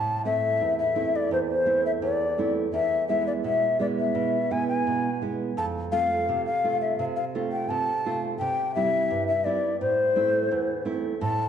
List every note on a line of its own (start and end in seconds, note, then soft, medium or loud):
0.00 0.59 A2 medium
0.00 0.23 A5 medium
0.25 0.82 A3 soft
0.25 0.82 C4 soft
0.25 0.83 E4 soft
0.25 0.75 E5 medium
0.61 1.30 E2 soft
0.79 1.17 E5 medium
0.95 1.53 A3 soft
0.95 1.53 C4 soft
0.95 1.53 E4 soft
1.16 1.32 D5 medium
1.31 2.01 E2 medium
1.31 1.39 C5 medium
1.51 1.84 C5 medium
1.66 2.23 A3 soft
1.66 2.24 C4 soft
1.66 2.24 E4 soft
1.86 1.92 E5 medium
2.02 2.72 E2 medium
2.02 2.52 D5 medium
2.38 2.67 A3 soft
2.38 2.67 C4 soft
2.38 2.67 E4 soft
2.73 3.43 E2 medium
2.73 3.07 E5 medium
3.08 3.66 G#3 soft
3.08 3.66 B3 soft
3.08 3.67 E4 soft
3.08 3.25 E5 medium
3.27 3.33 D5 medium
3.44 4.14 B2 soft
3.44 3.78 E5 medium
3.79 4.36 G#3 soft
3.79 4.37 B3 soft
3.79 4.37 E4 soft
3.79 3.87 D5 medium
3.99 4.53 E5 medium
4.15 4.84 B2 medium
4.51 5.08 G#3 soft
4.51 5.08 B3 soft
4.51 5.08 E4 soft
4.51 4.67 G#5 medium
4.68 5.18 G#5 medium
4.87 5.56 B2 medium
5.22 5.50 G#3 soft
5.22 5.50 B3 soft
5.22 5.51 E4 soft
5.57 6.26 F2 medium
5.57 5.66 A5 medium
5.92 6.49 A3 soft
5.92 6.49 C4 soft
5.92 6.49 F4 soft
5.92 6.42 F5 medium
6.29 6.97 C3 medium
6.46 6.79 F5 medium
6.64 7.20 A3 soft
6.64 7.21 C4 soft
6.64 7.21 F4 soft
6.81 6.98 E5 medium
6.99 7.67 C3 medium
6.99 7.05 F5 medium
7.16 7.24 F5 medium
7.35 7.91 A3 soft
7.35 7.91 C4 soft
7.35 7.91 F4 soft
7.52 7.71 G5 medium
7.69 8.38 C3 medium
7.69 8.22 A5 medium
8.06 8.34 A3 soft
8.06 8.34 C4 soft
8.06 8.34 F4 soft
8.39 9.09 C3 medium
8.39 8.72 G5 medium
8.75 9.32 G3 soft
8.75 9.32 C4 soft
8.75 9.33 E4 soft
8.75 9.24 E5 medium
9.10 9.79 G2 medium
9.28 9.46 E5 medium
9.45 9.74 G3 soft
9.45 9.74 C4 soft
9.45 9.74 E4 soft
9.45 9.80 D5 medium
9.81 10.49 A2 medium
9.81 10.82 C5 medium
10.16 10.72 A3 soft
10.16 10.72 C4 soft
10.16 10.73 E4 soft
10.51 11.19 E2 medium
10.85 11.14 A3 soft
10.85 11.14 C4 soft
10.85 11.14 E4 soft
11.21 11.49 A2 medium
11.21 11.49 A5 medium